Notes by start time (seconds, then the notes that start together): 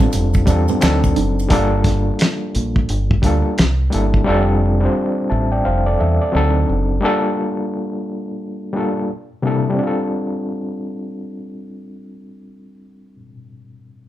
Already playing: G3 C4 D4 F4 A4
0.00 C4, kick, maracas
0.13 F1, muted nylon-string guitar stroke, closed hi-hat, maracas
0.34 kick, maracas
0.46 E2 G3 C4 D4 F4, kick, closed hi-hat, maracas
0.50 A4
0.68 C4, maracas
0.79 D2 F3 C4 D4 D#4, finger snap, snare, closed hi-hat, maracas
0.84 F#3 A4
1.04 kick, maracas
1.16 F#1 D4, closed hi-hat
1.39 maracas
1.49 G1 G3 A#3 D4 F4, kick, closed hi-hat
1.53 A4
1.84 kick, snare, closed hi-hat
2.19 finger snap, snare, closed hi-hat
2.55 A#1, closed hi-hat
2.76 kick
2.89 G1, closed hi-hat
3.11 kick
3.22 D2 G3 A#3 D4 F4, kick, closed hi-hat
3.27 A4
3.58 C2, finger snap, snare, closed hi-hat
3.90 G1 G3 A#3 D4 E4, closed hi-hat
3.94 A4
4.14 kick
4.25 F1 G3 C4 D4 F4
4.29 A4
4.81 G3 C4 D4 F4
4.85 C5
5.30 A1 E5 A5
5.52 D5 G5
5.65 F1 C5 F5
5.86 A4 D5
6.00 E2 A4 E5
6.21 A4 D5
6.32 D2 F#3 C4 D4 D#4
6.36 A4
6.69 F#1
7.01 G3 A#3 D4 F4
7.05 A4
8.73 G3 A#3 D4 F4
8.77 A4
9.42 C3 G3 A#3 D4 E4
9.47 A4
9.70 G3
9.74 C4
9.79 D4
9.83 F4
9.87 A4